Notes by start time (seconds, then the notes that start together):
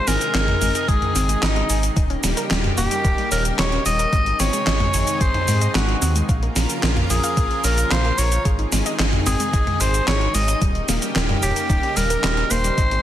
Already playing: C3 D#3 G#3 D#4 G#4
0.07 G#1 A#4 G#5, snare, open hi-hat, cabasa
0.21 closed hi-hat, cabasa
0.34 G#1 G#4, snare, clap, closed hi-hat, cabasa
0.48 D#4, closed hi-hat, mid tom
0.61 G#1 G#3, open hi-hat, cabasa
0.75 D#5, closed hi-hat, cabasa
0.88 G#1 G#3 G#4, kick, closed hi-hat, cabasa
1.02 closed hi-hat, mid tom
1.15 G#1 C4, open hi-hat, cabasa
1.29 G#3, closed hi-hat, cabasa
1.42 G#1 D#4 D#5, snare, clap, closed hi-hat, cabasa
1.56 G#3, closed hi-hat
1.70 G#1 G#5, open hi-hat, cabasa
1.83 closed hi-hat, cabasa
1.96 D#1 C#3 G3 A#3 D#4 G4, kick, closed hi-hat, cabasa
2.10 C#4, closed hi-hat
2.24 D#1 G3, snare, open hi-hat, cabasa
2.37 A#4, closed hi-hat, cabasa
2.51 D#1 G3, snare, clap, closed hi-hat, cabasa
2.64 closed hi-hat, mid tom
2.77 D#1 A#3 G4, open hi-hat, cabasa
2.91 G3, closed hi-hat, cabasa
3.05 D#1 A#4, kick, closed hi-hat, cabasa
3.18 G3, closed hi-hat
3.31 D#1 A#4 C#5, open hi-hat, cabasa
3.45 closed hi-hat, cabasa
3.58 D#1 D#4 C#5, snare, clap, closed hi-hat, cabasa
3.72 C#4, closed hi-hat
3.86 D#1 G3 D#5, open hi-hat, cabasa
3.99 A#4, closed hi-hat, cabasa
4.13 G#1 C3 D#3 G#3 G#4, kick, closed hi-hat, cabasa
4.26 closed hi-hat
4.40 G#1 C4 C#5, snare, open hi-hat, cabasa
4.53 G#3, closed hi-hat, cabasa
4.67 G#1 D#5, snare, clap, closed hi-hat, cabasa
4.80 G#3, closed hi-hat, mid tom
4.94 G#1 G#5, open hi-hat, cabasa
5.07 closed hi-hat, cabasa
5.21 G#1 G#4 C5, kick, closed hi-hat, cabasa
5.34 D#4, closed hi-hat, mid tom
5.48 G#2 G#3, open hi-hat, cabasa
5.61 D#5, closed hi-hat, cabasa
5.75 G#1 G#3 F#4, snare, clap, closed hi-hat, cabasa
5.89 closed hi-hat
6.02 D#2 C4, open hi-hat, cabasa
6.15 G#3, closed hi-hat, cabasa
6.29 A#1 C#3 F3 A#3 F4 A#4 F5, kick, closed hi-hat, cabasa
6.43 A#3, closed hi-hat
6.56 A#1 A#5, snare, open hi-hat, cabasa
6.70 closed hi-hat, cabasa
6.83 A#1 A#4, snare, clap, closed hi-hat, cabasa
6.97 F4, closed hi-hat, mid tom
7.10 A#1 A#3 G#4, open hi-hat, cabasa
7.24 F5, closed hi-hat, cabasa
7.37 A#1 A#3, kick, closed hi-hat, cabasa
7.51 closed hi-hat
7.64 A#1 C#4 A#4, open hi-hat, cabasa
7.78 A#3, closed hi-hat, cabasa
7.91 A#1 C5 F5, snare, clap, closed hi-hat, cabasa
8.05 A#3, closed hi-hat
8.18 A#1 C#5 A#5, open hi-hat, cabasa
8.32 closed hi-hat, cabasa
8.45 G#1 C3 D#3 G#3 D#4 G#4, kick, closed hi-hat, cabasa
8.59 D#4, closed hi-hat
8.72 G#1 G#3, snare, open hi-hat, cabasa
8.86 D#5, closed hi-hat, cabasa
8.99 G#1 G#3, snare, clap, closed hi-hat, cabasa
9.13 closed hi-hat, mid tom
9.26 G#1 C4 G#4, open hi-hat, cabasa
9.40 G#3, closed hi-hat, cabasa
9.53 G#1 D#5, kick, closed hi-hat, cabasa
9.67 G#3, closed hi-hat, mid tom
9.80 G#1 C5 G#5, open hi-hat, cabasa
9.94 closed hi-hat, cabasa
10.08 G#1 G#4 C#5, snare, clap, closed hi-hat, cabasa
10.21 D#4, closed hi-hat
10.35 G#1 G#3 D#5, open hi-hat, cabasa
10.48 D#5, closed hi-hat, cabasa
10.62 D#1 C#3 G3 A#3 G4, kick, closed hi-hat, cabasa
10.75 closed hi-hat
10.89 D#1 A#3, snare, open hi-hat, cabasa
11.02 G3, closed hi-hat, cabasa
11.16 D#1 A#4, snare, clap, closed hi-hat, cabasa
11.29 G3, closed hi-hat, mid tom
11.43 D#1 G4 C#5, open hi-hat, cabasa
11.56 closed hi-hat, cabasa
11.70 D#1 D#4, kick, closed hi-hat, cabasa
11.83 C#4, closed hi-hat
11.97 D#1 G3 A#4, open hi-hat, cabasa
12.10 A#4, closed hi-hat, cabasa
12.24 D#1 G3, snare, clap, closed hi-hat, cabasa
12.37 closed hi-hat
12.50 D#1 A#3 C5, open hi-hat, cabasa
12.64 G3, closed hi-hat, cabasa
12.78 G#1 C3 D#3 G#3 G#4 D#5, kick, closed hi-hat, cabasa
12.91 G#3, closed hi-hat